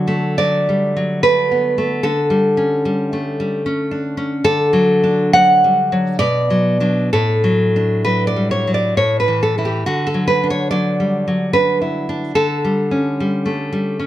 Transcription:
Already playing: D3 F#3 F#4
0.08 A3
0.38 F#3 D5
0.69 G3
0.97 F#3
1.23 A3 B4
1.51 B3
1.78 A3
2.03 D3 A4
2.30 G3
2.57 C#4
2.85 G3
3.13 A3
3.40 G3
3.66 C#4
3.91 D4
4.17 C#4
4.44 D3 A4
4.73 F#3
5.04 D4
5.33 F#3 F#5
5.64 G3
5.92 F#3
6.19 B2 D5
6.50 F#3
6.80 F#3 D4
7.13 A2 A4
7.44 F#3
7.76 D4
8.05 F#3 B4
8.27 D5
8.36 G3
8.51 C#5
8.67 F#3
8.74 D5
8.97 A2 C#5
9.20 B4
9.28 E3
9.43 A4
9.58 E3 E4
9.65 G4
9.86 D3 F#4
10.07 A4
10.14 F#3
10.27 B4
10.44 D4
10.50 C#5
10.71 F#3 D5
11.00 G3
11.28 F#3
11.53 D4 B4
11.81 E4
12.09 D4
12.35 D3 A4
12.65 G3
12.91 C#4
13.20 G3
13.46 A3
13.73 G3
13.99 C#4

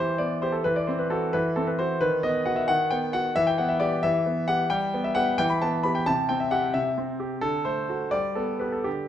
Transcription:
Already playing: E3 C5
0.18 B3 D5
0.42 G4 C5
0.52 A4
0.64 E3 B4
0.76 D5
0.87 C4 C5
0.99 B4
1.10 F#4 A4
1.33 E3 B4
1.56 C4 A4
1.67 B4
1.79 F#4 C5
2.01 D#3 B4
2.23 B3 D#5
2.46 F#4 F#5
2.56 E5
2.68 D#3 F#5
2.90 B3 G5
3.13 F#4 F#5
3.36 E3 E5
3.47 G5
3.58 B3 F#5
3.69 E5
3.80 G4 D5
4.03 E3 E5
4.26 B3
4.48 G4 F#5
4.70 G3 G5
4.94 B3
5.04 E5
5.15 B3 G4 F#5
5.38 E3 G5
5.50 B5
5.62 B3 A5
5.83 B3 G4 B5
5.95 G5
6.06 C3 A5
6.29 C4 G5
6.40 E5
6.51 G4 F#5
6.74 C3 E5
6.98 C4
7.20 G4
7.41 D3 A4
7.65 A3 C5
7.89 A3 F#4
8.11 G3 D5
8.35 B3 A4
8.59 B3 G4 B4
8.72 A4
8.84 D3 G4

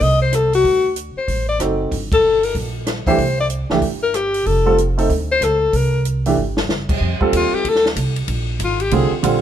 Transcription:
0.01 C2 D#5, kick, open hi-hat
0.22 C5
0.33 A4, cross-stick, closed hi-hat
0.53 F#4, open hi-hat
0.64 D2, kick, open hi-hat
0.96 closed hi-hat
1.16 C5, muted upright bass stroke
1.28 A1, kick, open hi-hat
1.49 D5
1.59 F#1 C4 D#4 F#4 A4, cross-stick, closed hi-hat
1.91 G1, kick, open hi-hat
2.12 A4, kick, ride
2.43 A#4, open hi-hat
2.55 A#1, kick, open hi-hat
2.87 cross-stick, snare, closed hi-hat
3.06 E3 A3 D4 G4 C5, muted upright bass stroke, kick, open hi-hat
3.18 C2, kick, open hi-hat
3.40 D5
3.50 closed hi-hat
3.70 C#2 E3 A3 D4 G4, snare
3.82 G1, kick, open hi-hat
4.03 A#4
4.14 G4, cross-stick, closed hi-hat
4.34 open hi-hat
4.46 F1 A4, kick, open hi-hat
4.66 G3 C4 F4 A4
4.78 closed hi-hat
4.98 A3 C4 D#4 A4, open hi-hat
5.10 D2, kick, open hi-hat
5.31 C5
5.41 C#2 A4, cross-stick, closed hi-hat
5.73 C2 A#4, kick, open hi-hat
6.05 closed hi-hat
6.26 E3 A3 D4 G4, open hi-hat
6.36 G1
6.57 snare
6.68 F#1, snare
6.89 kick, crash
7.01 F2, kick
7.21 G3 C4 F4 A4, muted upright bass stroke, kick
7.33 D#2 F4, kick, hi-hat pedal, ride
7.53 G4, muted upright bass stroke
7.64 D2, kick, ride
7.69 A4
7.75 snare
7.86 snare
7.96 C2, kick, hi-hat pedal, ride
8.16 ride
8.28 A#1, kick, ride
8.59 G#1, kick, hi-hat pedal, ride
8.64 F4
8.80 G4, ride
8.91 C2 D3 G3 C4 F4 G#4, kick, ride
9.11 muted upright bass stroke
9.23 A#1 D3 G3 C4 F4, kick, hi-hat pedal, ride

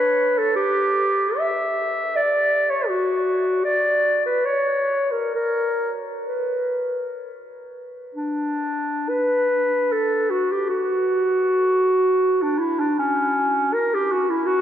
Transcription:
Already playing: B4
0.38 A4
0.56 G4
1.38 E5
2.16 D5
2.70 C#5
2.88 F#4
3.64 D5
4.26 B4
4.45 C#5
5.12 A#4
5.34 A#4
6.26 B4
8.15 D4
9.09 B4
9.92 A4
10.30 F#4
10.52 G4
10.70 F#4
12.42 D4
12.59 E4
12.80 D4
12.99 C#4
13.74 A#4
13.94 G4
14.12 F#4
14.30 E4
14.46 F#4

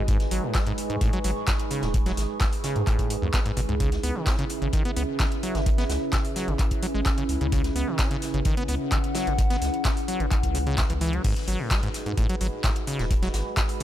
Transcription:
Already playing: G#1 G#3 D#4 G#4 B4 D#5 G#5 B5
0.08 G#2 G#4, kick, closed hi-hat
0.20 snare, closed hi-hat
0.31 G#1 F#3, closed hi-hat, open hi-hat
0.43 A2 C#6
0.55 G#3, kick, snare, clap, closed hi-hat
0.67 G#2, closed hi-hat
0.78 closed hi-hat, open hi-hat
0.90 G#2, closed hi-hat
1.01 A2, kick, closed hi-hat
1.13 F#3, closed hi-hat
1.24 G#1 F#3, closed hi-hat, open hi-hat
1.47 F#2, kick, snare, clap, closed hi-hat
1.59 closed hi-hat
1.70 C#3, closed hi-hat, open hi-hat
1.81 D#1 G#2, snare, closed hi-hat
1.94 A2, kick, closed hi-hat
2.06 F#3, snare, closed hi-hat
2.17 G#1, snare, closed hi-hat, open hi-hat
2.40 F#2, kick, snare, clap, closed hi-hat
2.52 closed hi-hat, open hi-hat
2.64 C#3, snare, closed hi-hat, open hi-hat
2.76 G#2, closed hi-hat
2.87 A2, kick, clap, closed hi-hat
2.99 kick, closed hi-hat
3.10 G#2, closed hi-hat, open hi-hat
3.22 D#2 F#2
3.33 B3, kick, snare, clap, closed hi-hat
3.46 G#2, closed hi-hat
3.57 G#1 B2, closed hi-hat, open hi-hat
3.69 C#2 G#2, closed hi-hat
3.80 C#3 C#4 E4 B4, kick, closed hi-hat
3.92 snare, closed hi-hat
4.03 C#2 B3, closed hi-hat, open hi-hat
4.07 E5
4.15 D#3
4.27 C#4, kick, snare, clap, closed hi-hat
4.39 C#3, closed hi-hat
4.49 closed hi-hat, open hi-hat
4.62 G#1 C#3, closed hi-hat
4.73 D#3, kick, closed hi-hat
4.85 B3, closed hi-hat
4.96 C#2 B3, closed hi-hat, open hi-hat
5.19 D#3, kick, snare, clap, closed hi-hat
5.32 closed hi-hat
5.43 F#3, closed hi-hat, open hi-hat
5.55 G#1 C#3, snare, closed hi-hat
5.66 D#3, kick, closed hi-hat
5.78 B3, snare, closed hi-hat
5.89 C#2, snare, closed hi-hat, open hi-hat
6.13 B2, kick, snare, clap, closed hi-hat
6.24 closed hi-hat, open hi-hat
6.36 F#3, snare, closed hi-hat, open hi-hat
6.48 G#1 C#3, closed hi-hat
6.59 D#3, kick, clap, closed hi-hat
6.71 kick, closed hi-hat
6.83 F#3, closed hi-hat, open hi-hat
6.95 G#1 G#3
7.05 C#3, kick, snare, clap, closed hi-hat
7.18 C#3, closed hi-hat
7.29 C#2, closed hi-hat, open hi-hat
7.41 C#2 C#3, closed hi-hat
7.52 C#3, kick, closed hi-hat
7.64 snare, closed hi-hat
7.76 C#2 B3, closed hi-hat, open hi-hat
7.88 D#3
7.98 C#4, kick, snare, clap, closed hi-hat
8.11 C#3, closed hi-hat
8.22 snare, closed hi-hat, open hi-hat
8.34 G#1 C#3, closed hi-hat
8.45 D#3 F#5, kick, closed hi-hat
8.57 B3, closed hi-hat
8.68 C#2 B3, closed hi-hat, open hi-hat
8.92 D#3, kick, clap, closed hi-hat
9.04 closed hi-hat
9.14 F#3, snare, closed hi-hat, open hi-hat
9.27 G#1 C#3, closed hi-hat
9.38 D#3, kick, closed hi-hat
9.50 B3, snare, closed hi-hat
9.62 C#2, snare, closed hi-hat, open hi-hat
9.74 closed hi-hat
9.85 B2, kick, snare, clap, closed hi-hat
9.97 closed hi-hat, open hi-hat
10.08 F#3, open hi-hat
10.20 G#1 C#3, closed hi-hat
10.31 D#3, kick, clap, closed hi-hat
10.43 C#2, kick, closed hi-hat
10.55 C#3, closed hi-hat, open hi-hat
10.66 C#3, closed hi-hat
10.78 B2, kick, snare, clap, closed hi-hat
10.90 C#2 E3, closed hi-hat
11.01 E3, closed hi-hat, open hi-hat
11.13 F#3, closed hi-hat
11.24 G#2 G#3 D#4 F#4 G#4 B4, kick, closed hi-hat, crash
11.36 D#5, snare, closed hi-hat
11.47 G#1 F#3, closed hi-hat, open hi-hat
11.60 A2
11.71 G#3 B5, kick, snare, clap, closed hi-hat
11.83 G#2 G#5, closed hi-hat
11.94 snare, closed hi-hat, open hi-hat
12.06 G#2, closed hi-hat
12.17 A2, kick, closed hi-hat
12.29 F#3, closed hi-hat
12.41 G#1 F#3, closed hi-hat, open hi-hat
12.63 A2, kick, snare, clap, closed hi-hat
12.76 closed hi-hat
12.87 C#3, closed hi-hat, open hi-hat
12.99 D#1 G#2, snare, closed hi-hat
13.11 A2, kick, closed hi-hat
13.22 F#3, snare, closed hi-hat
13.34 G#1, snare, closed hi-hat, open hi-hat
13.57 F#2, kick, snare, clap, closed hi-hat
13.69 closed hi-hat, open hi-hat

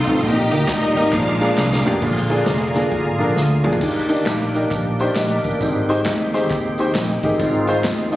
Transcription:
Already playing: A3 C4 D#4 F4 A4 F5 C6 D#6
0.07 B1 C4 D#4 F4 A4, kick, closed hi-hat, tambourine
0.23 A#1 A#2 A#3 D#4 G4 D#5 A#5, kick, closed hi-hat, tambourine
0.51 D2 A#3 D#4 G4 A#4, closed hi-hat, tambourine
0.68 D#2 G3 A#3 D#4, kick, snare, clap, closed hi-hat, tambourine
0.95 G#1 A#3 D#4 G4 A#4, closed hi-hat, tambourine
1.13 A#1 A#2 F3 G#3 D4 G#4 F5 D6, kick, clap, closed hi-hat, tambourine
1.40 A#3 D4 F4 G#4, closed hi-hat, tambourine
1.58 C2, snare, clap, tambourine
1.72 snare
1.85 B1 A#3 D4 F4 G4, floor tom, tambourine
2.01 A#1 A#2 D3 A#3 F4 G#4 D5 F5 G#5 A#5, kick, crash
2.16 snare
2.30 A#3 D4 F4 G#4, closed hi-hat
2.46 F1, snare, closed hi-hat
2.74 A#3 D4 F4 G#4, snare, closed hi-hat
2.91 G#1, kick, closed hi-hat
3.19 A#1 A#3 D4 F4 A#4, closed hi-hat
3.36 D2, snare
3.64 A#1 A#3 D4 F4 G#4, mid tom
3.72 floor tom
3.81 D#2 D#3 A#3 D4 G4, kick, crash, tambourine
4.09 D4 D#4 G4 A#4, closed hi-hat, tambourine
4.26 A#1, snare, clap, closed hi-hat, tambourine
4.54 D4 D#4 G4 A#4, closed hi-hat, tambourine
4.71 A#1, kick, clap, closed hi-hat, tambourine
4.99 D4 D#4 G4 C5, closed hi-hat, tambourine
5.15 A#1 G4 D#5, snare, clap, closed hi-hat, tambourine
5.44 A1 D4 A#4, kick, closed hi-hat, tambourine
5.61 G#1 G#2 G#3 C4, kick, closed hi-hat, tambourine
5.89 D#4 G4 G#4 C5, closed hi-hat, tambourine
6.05 D#2, snare, clap, closed hi-hat, tambourine
6.33 D#4 G4 G#4 C5, snare, closed hi-hat, tambourine
6.50 D#2, kick, clap, closed hi-hat, tambourine
6.78 D#4 G4 G#4 C5, closed hi-hat, tambourine
6.94 A#1, snare, clap, closed hi-hat, tambourine
7.23 A1 D#4 G4 G#4 A#4, kick, closed hi-hat, tambourine
7.40 G#1 G#2 F4, kick, closed hi-hat, tambourine
7.67 D#4 F4 G#4 C5, closed hi-hat, tambourine
7.84 D#2, snare, clap, closed hi-hat, tambourine
8.11 D#4 F4 G#4 D5, closed hi-hat, tambourine

